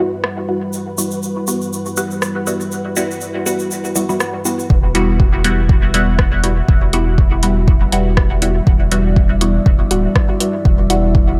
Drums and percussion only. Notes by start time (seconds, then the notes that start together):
0.24 cross-stick
0.73 shaker
0.98 shaker
1.11 shaker
1.23 shaker
1.47 shaker
1.61 shaker
1.73 shaker
1.86 shaker
1.97 shaker
2.11 shaker
2.22 cross-stick, shaker
2.47 shaker
2.61 shaker
2.72 shaker
2.96 shaker
3.11 shaker
3.21 shaker
3.46 shaker
3.59 shaker
3.71 shaker
3.85 shaker
3.96 shaker
4.10 shaker
4.20 cross-stick, shaker
4.45 shaker
4.59 shaker
4.70 kick
4.95 closed hi-hat
5.20 kick
5.44 closed hi-hat
5.69 kick
5.94 closed hi-hat
6.19 kick, cross-stick
6.44 closed hi-hat
6.68 kick
6.93 closed hi-hat
7.18 kick
7.43 closed hi-hat
7.68 kick
7.92 closed hi-hat
8.17 kick, cross-stick
8.42 closed hi-hat
8.67 kick
8.92 closed hi-hat
9.16 kick
9.41 closed hi-hat
9.66 kick
9.91 closed hi-hat
10.16 kick, cross-stick
10.40 closed hi-hat
10.65 kick
10.90 closed hi-hat
11.15 kick